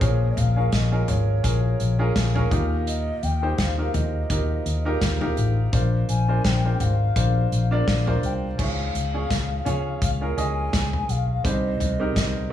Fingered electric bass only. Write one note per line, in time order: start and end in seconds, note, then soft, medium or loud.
0.01 0.31 A#1 medium
0.38 0.67 A#1 medium
0.73 1.02 A#1 medium
1.09 1.38 G#1 medium
1.44 1.73 A#1 medium
1.80 2.09 A#1 medium
2.16 2.45 A#1 medium
2.52 3.10 D#2 medium
3.23 3.52 D#2 medium
3.59 3.88 D#2 medium
3.94 4.24 D#2 medium
4.30 4.59 D#2 medium
4.66 4.95 D#2 medium
5.02 5.31 D#2 medium
5.38 5.67 A1 medium
5.73 6.02 A#1 medium
6.09 6.38 A#1 medium
6.45 6.74 A#1 medium
6.80 7.10 G#1 medium
7.16 7.45 A#1 medium
7.52 7.81 A#1 medium
7.88 8.17 A#1 medium
8.23 8.52 C2 medium
8.59 8.88 C#2 loud
8.95 9.24 C#2 medium
9.31 9.60 C#2 medium
9.66 9.95 C#3 medium
10.02 10.31 C#2 medium
10.38 10.67 C#2 medium
10.74 11.03 C#2 medium
11.09 11.38 B1 medium
11.45 11.74 C2 loud
11.80 12.09 C2 medium
12.16 12.45 C2 medium